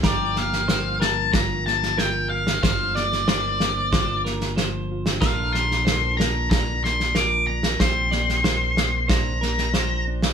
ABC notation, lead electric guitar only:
X:1
M:4/4
L:1/8
Q:1/4=93
K:Gm
V:1 name="Lead electric guitar"
d f2 a b a g f | f d d3 z3 | f c'2 b b c' d' b | c'4 b3 z |]